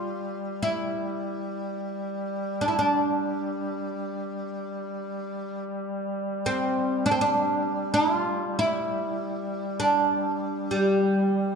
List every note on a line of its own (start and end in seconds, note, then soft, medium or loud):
0.00 11.55 G3 soft
0.00 0.62 F4 medium
0.63 2.61 E4 medium
2.61 2.68 D4 soft
2.68 2.76 E4 soft
2.79 5.63 D4 medium
6.46 7.06 C4 medium
7.06 7.11 D4 medium
7.11 7.19 C4 medium
7.21 7.93 D4 medium
7.94 8.58 F4 medium
8.59 9.79 E4 medium
9.80 10.73 D4 medium
10.71 11.55 G3 medium